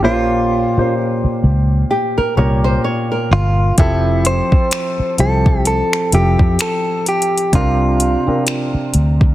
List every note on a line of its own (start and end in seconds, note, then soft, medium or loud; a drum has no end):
0.02 0.65 A#1 loud
0.02 0.56 A#2 medium
0.02 0.56 A#3 medium
0.02 0.56 C#4 medium
0.02 0.94 F4 medium
0.02 0.56 G4 medium
0.02 0.56 C5 loud
0.77 1.96 A#2 medium
0.77 1.96 A#3 medium
0.77 1.96 C#4 medium
0.77 1.96 G4 medium
0.77 1.96 C5 medium
0.77 muted fingered electric bass stroke soft
1.24 muted fingered electric bass stroke soft
1.44 1.83 C#2 medium
1.91 2.16 G4 medium
2.18 2.36 A#4 medium
2.18 muted fingered electric bass stroke soft
2.37 2.76 C2 medium
2.37 3.43 A#2 medium
2.37 3.43 A#3 medium
2.37 3.43 C#4 medium
2.37 3.44 G4 medium
2.37 3.44 A#4 medium
2.37 2.63 C#5 medium
2.64 2.83 C5 medium
2.84 3.10 C#5 medium
3.12 3.75 A#4 medium
3.31 3.70 G1 medium
3.31 3.76 F4 medium
3.78 4.40 F1 medium
3.78 4.84 F3 medium
3.78 4.84 C4 medium
3.78 4.84 E4 medium
3.78 4.27 E4 medium
3.78 4.84 G4 medium
3.78 4.85 A4 loud
3.78 kick loud
3.78 closed hi-hat medium
4.25 5.15 C5 loud
4.25 closed hi-hat medium
4.52 muted fingered electric bass stroke soft
4.52 kick medium
4.71 finger snap loud
4.71 closed hi-hat medium
4.99 muted fingered electric bass stroke soft
5.18 5.80 C2 medium
5.18 5.91 F3 medium
5.18 5.92 C4 medium
5.18 5.92 E4 medium
5.18 5.92 G4 medium
5.18 5.66 A4 medium
5.18 5.92 C5 medium
5.18 closed hi-hat soft
5.46 kick medium
5.65 6.14 A4 medium
5.65 closed hi-hat medium
5.93 finger snap medium
6.12 6.35 F1 medium
6.12 7.18 F3 medium
6.12 7.19 C4 medium
6.12 7.19 E4 medium
6.12 7.19 G4 medium
6.12 6.61 G4 medium
6.12 7.19 A4 medium
6.12 closed hi-hat medium
6.39 6.56 F2 medium
6.39 kick medium
6.59 7.08 A4 medium
6.59 finger snap loud
6.59 closed hi-hat medium
7.06 7.55 G4 medium
7.06 closed hi-hat medium
7.22 closed hi-hat medium
7.38 closed hi-hat medium
7.53 8.15 C2 loud
7.53 8.06 C3 medium
7.53 8.06 C4 medium
7.53 8.06 D4 medium
7.53 8.06 F4 medium
7.53 8.44 F4 medium
7.53 8.07 A#4 medium
7.53 kick loud
7.53 closed hi-hat medium
8.00 closed hi-hat medium
8.27 9.35 C3 medium
8.27 9.35 C4 medium
8.27 9.35 D4 medium
8.27 9.35 F4 medium
8.27 9.35 A#4 medium
8.27 muted fingered electric bass stroke soft
8.47 finger snap medium
8.47 closed hi-hat medium
8.74 muted fingered electric bass stroke soft
8.94 9.33 D2 medium
8.94 closed hi-hat medium
9.21 kick medium